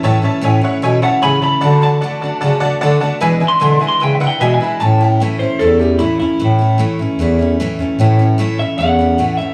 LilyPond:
<<
  \new Staff \with { instrumentName = "Clean electric guitar" } { \time 4/4 \key a \major \tempo 4 = 151 r2 r8 fis''8 b''8 b''8~ | b''8 a''2. r8 | \tuplet 3/2 { r4 c'''8~ c'''8 r8 c'''8 g''8 e''8 g''8 e''8 gis''4 } | a''8 g''8 e''8 c''8 a'8 g'8 e'8 e'8~ |
e'2~ e'8 r4. | r4. e''8 fis''4. e''8 | }
  \new Staff \with { instrumentName = "Honky-tonk piano" } { \time 4/4 \key a \major <cis'' e'' a''>8 <cis'' e'' a''>8 <cis'' e'' gis''>8 <cis'' e'' fis''>8 <cis'' e'' gis''>8 <cis'' e'' a''>8 <cis'' e'' gis''>8 <cis'' e'' a''>8 | <d'' fis'' a''>8 <d'' fis'' a''>8 <d'' fis'' a''>8 <d'' fis'' a''>8 <d'' fis'' a''>8 <d'' fis'' a''>8 <d'' fis'' a''>8 <d'' fis'' a''>8 | <b' e'' gis''>8 <b' e'' gis''>8 <b' e'' gis''>8 <b' e'' gis''>8 <b' e'' gis''>8 <b' e'' fis''>8 <b' e'' gis''>8 <b' e'' b''>8 | r1 |
r1 | r1 | }
  \new Staff \with { instrumentName = "Steel-string acoustic guitar" } { \time 4/4 \key a \major <a, e a cis' e'>8 <a cis' e'>8 <a, e a cis' e'>8 <a cis' e'>8 <e a cis' e'>8 <a cis' e'>8 <a, e a cis' e'>8 <a cis' e'>8 | <d a d' fis'>8 <a d' fis'>8 <d a d' fis'>8 <a d' fis'>8 <d a d' fis'>8 <a d' fis'>8 <d a d' fis'>8 <a d' fis'>8 | <e, b, e gis d' e'>8 <e gis d' e'>8 <e, b, e gis d' e'>8 <e gis d' e'>8 <e gis d' e'>8 <e gis d' e'>8 <e, b, e gis d' e'>8 <e gis d' e'>8 | <a, e a cis' e'>8 <a cis' e'>8 <a, e a cis' e'>8 <a cis' e'>8 <e a cis' e'>8 <a cis' e'>8 <a, e a cis' e'>8 <a cis' e'>8 |
<a, e a cis' e'>8 <a cis' e'>8 <a, e a cis' e'>8 <a cis' e'>8 <e a cis' e'>8 <a cis' e'>8 <a, e a cis' e'>8 <a cis' e'>8 | <a, e a cis' e'>8 <a cis' e'>8 <a, e a cis' e'>8 <a cis' e'>8 <e a cis' e'>8 <a cis' e'>8 <a, e a cis' e'>8 <a cis' e'>8 | }
  \new Staff \with { instrumentName = "Bass clarinet" } { \clef bass \time 4/4 \key a \major a,8 a,8 a,8 a,8 b,8 b,8 cis8 cis8 | d4. d8 cis8 r8 d8 d8 | e8 e8 d8 d8 cis8 cis8 b,8 b,8 | a,4. a,8 e,4. e,8 |
a,4. a,8 e,4. e,8 | a,4. a,8 e,4. r8 | }
>>